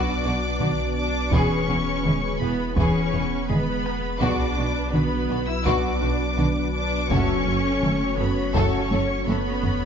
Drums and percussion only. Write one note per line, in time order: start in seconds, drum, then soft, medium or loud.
0.60 taiko mid medium
1.32 taiko loud
2.05 taiko mid medium
2.77 taiko medium
3.50 taiko mid medium
3.86 taiko rim soft
4.21 taiko loud
4.93 taiko mid medium
5.66 taiko medium
6.38 taiko mid medium
7.11 taiko loud
7.83 taiko mid medium
8.55 taiko medium
8.91 taiko high medium
9.28 taiko high medium
9.64 taiko low loud